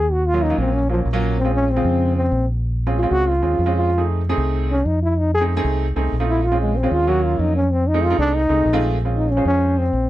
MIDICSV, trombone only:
0, 0, Header, 1, 2, 480
1, 0, Start_track
1, 0, Key_signature, -5, "minor"
1, 0, Tempo, 316957
1, 162, Time_signature, 4, 2, 24, 8
1, 15291, End_track
2, 0, Start_track
2, 0, Title_t, "Trombone"
2, 0, Program_c, 0, 57
2, 0, Note_on_c, 0, 68, 93
2, 175, Note_on_c, 0, 66, 93
2, 198, Note_off_c, 0, 68, 0
2, 408, Note_on_c, 0, 65, 105
2, 431, Note_off_c, 0, 66, 0
2, 658, Note_on_c, 0, 63, 92
2, 680, Note_off_c, 0, 65, 0
2, 889, Note_off_c, 0, 63, 0
2, 896, Note_on_c, 0, 60, 92
2, 1125, Note_on_c, 0, 61, 102
2, 1147, Note_off_c, 0, 60, 0
2, 1362, Note_off_c, 0, 61, 0
2, 1372, Note_on_c, 0, 53, 84
2, 1512, Note_off_c, 0, 53, 0
2, 2092, Note_on_c, 0, 60, 85
2, 2308, Note_off_c, 0, 60, 0
2, 2328, Note_on_c, 0, 61, 103
2, 2573, Note_on_c, 0, 60, 90
2, 2596, Note_off_c, 0, 61, 0
2, 3268, Note_off_c, 0, 60, 0
2, 3277, Note_on_c, 0, 60, 91
2, 3722, Note_off_c, 0, 60, 0
2, 4492, Note_on_c, 0, 65, 94
2, 4714, Note_on_c, 0, 66, 113
2, 4737, Note_off_c, 0, 65, 0
2, 4975, Note_on_c, 0, 65, 94
2, 4998, Note_off_c, 0, 66, 0
2, 5677, Note_off_c, 0, 65, 0
2, 5686, Note_on_c, 0, 65, 90
2, 6126, Note_off_c, 0, 65, 0
2, 7131, Note_on_c, 0, 61, 91
2, 7366, Note_on_c, 0, 63, 86
2, 7389, Note_off_c, 0, 61, 0
2, 7598, Note_off_c, 0, 63, 0
2, 7605, Note_on_c, 0, 64, 91
2, 7851, Note_on_c, 0, 63, 88
2, 7874, Note_off_c, 0, 64, 0
2, 8081, Note_off_c, 0, 63, 0
2, 8089, Note_on_c, 0, 68, 103
2, 8228, Note_off_c, 0, 68, 0
2, 9526, Note_on_c, 0, 64, 89
2, 9759, Note_on_c, 0, 65, 97
2, 9782, Note_off_c, 0, 64, 0
2, 9995, Note_off_c, 0, 65, 0
2, 10002, Note_on_c, 0, 56, 75
2, 10248, Note_on_c, 0, 60, 94
2, 10271, Note_off_c, 0, 56, 0
2, 10477, Note_on_c, 0, 65, 113
2, 10500, Note_off_c, 0, 60, 0
2, 10727, Note_on_c, 0, 66, 100
2, 10749, Note_off_c, 0, 65, 0
2, 10968, Note_on_c, 0, 65, 87
2, 10991, Note_off_c, 0, 66, 0
2, 11209, Note_on_c, 0, 63, 90
2, 11231, Note_off_c, 0, 65, 0
2, 11434, Note_off_c, 0, 63, 0
2, 11444, Note_on_c, 0, 61, 85
2, 11687, Note_on_c, 0, 60, 86
2, 11710, Note_off_c, 0, 61, 0
2, 11922, Note_on_c, 0, 63, 94
2, 11945, Note_off_c, 0, 60, 0
2, 12166, Note_on_c, 0, 65, 98
2, 12189, Note_off_c, 0, 63, 0
2, 12395, Note_off_c, 0, 65, 0
2, 12404, Note_on_c, 0, 62, 104
2, 12653, Note_on_c, 0, 63, 98
2, 12676, Note_off_c, 0, 62, 0
2, 13484, Note_off_c, 0, 63, 0
2, 13851, Note_on_c, 0, 63, 79
2, 14093, Note_on_c, 0, 61, 79
2, 14116, Note_off_c, 0, 63, 0
2, 14325, Note_off_c, 0, 61, 0
2, 14339, Note_on_c, 0, 61, 91
2, 14805, Note_on_c, 0, 60, 83
2, 14828, Note_off_c, 0, 61, 0
2, 15291, Note_off_c, 0, 60, 0
2, 15291, End_track
0, 0, End_of_file